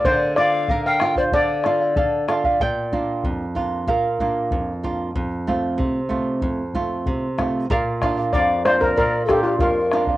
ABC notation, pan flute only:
X:1
M:2/4
L:1/16
Q:1/4=94
K:Bblyd
V:1 name="Pan flute"
d2 f3 g2 d | d6 z2 | z8 | z8 |
z8 | z8 | z4 f2 d c | d2 A G B3 z |]